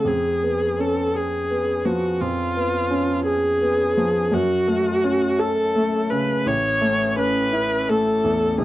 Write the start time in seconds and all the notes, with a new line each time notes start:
0.05 F2 G#4
0.43 B3
0.79 C#4 A4
1.15 G#4
1.50 B3
1.85 F3 F#4
2.20 F2 F4
2.56 B3
2.90 C#4
3.26 G#4
3.61 B3
3.97 F3
4.32 F#2 F#4
4.67 A3
5.04 C#4
5.39 A4
5.75 A3
6.10 C#3 B4
6.46 A1 C#5
6.81 A3
7.17 C#4 B4
7.53 E4
7.89 A3 A4
8.24 E2
8.58 B1 G#4